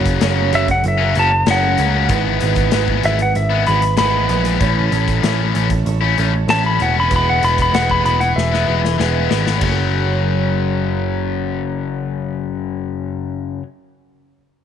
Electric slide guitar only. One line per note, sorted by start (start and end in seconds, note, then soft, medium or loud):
0.55 0.69 E5 medium
0.71 0.85 F#5 medium
0.88 1.16 E5 medium
1.19 1.48 A5 medium
1.51 2.70 F#5 medium
3.06 3.19 E5 medium
3.22 3.36 F#5 medium
3.36 3.66 E5 medium
3.67 3.97 B5 medium
3.98 5.19 B5 medium
6.50 6.64 A5 loud
6.66 6.80 B5 medium
6.82 6.96 F#5 medium
7.00 7.13 B5 medium
7.16 7.28 B5 medium
7.30 7.43 F#5 medium
7.45 7.58 B5 medium
7.62 7.75 B5 medium
7.75 7.89 F#5 medium
7.91 8.04 B5 medium
8.06 8.20 B5 medium
8.20 8.36 F#5 medium
8.36 9.57 E5 medium